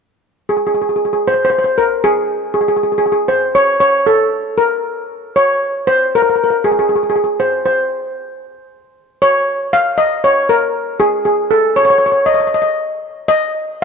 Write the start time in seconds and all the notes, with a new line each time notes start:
0.49 G#4
0.57 G#4
0.67 G#4
0.74 G#4
0.82 G#4
0.89 G#4
0.96 G#4
1.05 G#4
1.13 G#4
1.28 C5
1.34 C5
1.45 C5
1.50 C5
1.59 C5
1.64 C5
1.78 A#4
2.04 G#4
2.54 G#4
2.61 G#4
2.68 G#4
2.77 G#4
2.83 G#4
2.92 G#4
2.98 G#4
3.06 G#4
3.12 G#4
3.28 C5
3.55 C#5
3.80 C#5
4.07 A4
4.58 A#4
5.36 C#5
5.87 C5
6.15 A#4
6.22 A#4
6.29 A#4
6.36 A#4
6.44 A#4
6.50 A#4
6.64 G#4
6.72 G#4
6.79 G#4
6.89 G#4
6.95 G#4
7.03 G#4
7.10 G#4
7.16 G#4
7.24 G#4
7.40 C5
7.66 C5
9.22 C#5
9.73 F5
9.98 D#5
10.24 C#5
10.49 A#4
11.00 G#4
11.25 G#4
11.51 A4
11.76 C#5
11.85 C#5
11.90 C#5
11.98 C#5
12.06 C#5
12.12 C#5
12.26 D#5
12.34 D#5
12.40 D#5
12.47 D#5
12.54 D#5
12.62 D#5
13.28 D#5